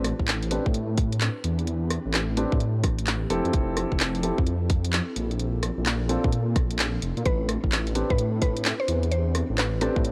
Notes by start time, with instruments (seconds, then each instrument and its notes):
Already playing: detuned saw bass A1, ambient pad C4 D4 G4 B4
0.04 cross-stick, open hi-hat
0.19 detuned saw bass A1, kick
0.28 clap, closed hi-hat
0.43 open hi-hat
0.51 grand piano C4 D4 G4 B4, open hi-hat
0.66 detuned saw bass A2, kick
0.74 closed hi-hat
0.97 kick, open hi-hat
1.12 closed hi-hat
1.21 clap, closed hi-hat
1.44 detuned saw bass E2, open hi-hat
1.59 closed hi-hat
1.67 closed hi-hat
1.90 cross-stick, open hi-hat
2.05 detuned saw bass A1
2.14 cross-stick, clap, closed hi-hat
2.37 grand piano C4 D4 G4 B4, open hi-hat
2.52 detuned saw bass A2, kick
2.60 closed hi-hat
2.84 detuned saw bass A1, kick, cross-stick, open hi-hat
2.99 closed hi-hat
3.07 clap, closed hi-hat
3.30 detuned saw bass F1, grand piano C4 E4 G4 A4, ambient pad C4 E4 A4, open hi-hat
3.45 detuned saw bass F2, closed hi-hat
3.53 detuned saw bass F1, kick, closed hi-hat
3.77 cross-stick, open hi-hat
3.92 detuned saw bass F1, kick
4.00 clap, closed hi-hat
4.15 open hi-hat
4.23 grand piano C4 E4 G4 A4, open hi-hat
4.38 detuned saw bass F2, kick
4.47 closed hi-hat
4.70 kick, open hi-hat
4.85 closed hi-hat
4.93 clap, closed hi-hat
5.16 detuned saw bass A#1, open hi-hat
5.31 closed hi-hat
5.39 ambient pad C4 D4 F4 A4, closed hi-hat
5.63 cross-stick, open hi-hat
5.78 detuned saw bass A#1
5.86 cross-stick, clap, closed hi-hat
6.09 grand piano C4 D4 F4 A4, open hi-hat
6.24 detuned saw bass A#2, kick
6.32 closed hi-hat
6.56 detuned saw bass A#1, kick, cross-stick, open hi-hat
6.71 closed hi-hat
6.79 clap, closed hi-hat
7.02 detuned saw bass F1, open hi-hat
7.17 detuned saw bass A#2, closed hi-hat
7.25 detuned saw bass A1, ambient pad G4 B4, synth pluck B4, kick, closed hi-hat
7.49 cross-stick, open hi-hat
7.64 detuned saw bass A1, kick
7.72 clap, closed hi-hat
7.87 open hi-hat
7.95 grand piano C4 D4 G4 B4, open hi-hat
8.10 detuned saw bass A2, synth pluck B4, kick
8.18 closed hi-hat
8.42 synth pluck B4, kick, open hi-hat
8.57 closed hi-hat
8.65 clap, closed hi-hat
8.80 synth pluck C5
8.88 detuned saw bass E2, open hi-hat
9.03 closed hi-hat
9.11 synth pluck C5, closed hi-hat
9.35 cross-stick, open hi-hat
9.50 detuned saw bass A1
9.58 synth pluck B4, cross-stick, clap, closed hi-hat
9.81 grand piano C4 D4 G4 B4, synth pluck A4, open hi-hat
9.96 detuned saw bass A2, kick
10.05 closed hi-hat